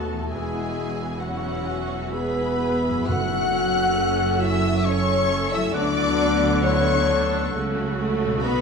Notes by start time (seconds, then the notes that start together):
Already playing: D#2 B2 A3 B3 D#4 F#4 A4 A5
0.13 E2
0.18 B3
0.22 E4
0.27 F#4
0.31 E1 E2 G#3 B3 E4 G#4 E5 G#5
1.19 F#3 C#4 E4 F#4 F#5
1.67 F#4
2.13 B3 G#4 B4 B5
2.60 G#4
2.88 F#2
2.94 A3
2.98 E4
3.02 F#4
3.07 F#1 F#2 A3 F#4 A4 F#5 F#6
3.52 C#4
3.97 A4
4.39 E4 E5 E6
4.85 C#4 A4 C#5 C#6
5.52 E4 E5 E6
5.56 F#3
5.61 A3
5.71 B3 D4 F#4 D5 F#5
5.75 D2 D3 D5 D6
6.64 E4 C#5 C#6
7.09 D4
7.54 C#2 C#3 A3 F#4
7.99 A3
8.26 B2
8.30 B3
8.35 D#4
8.39 B3 F#4
8.43 B1 B2 B3 F#4 B4 D#5 B5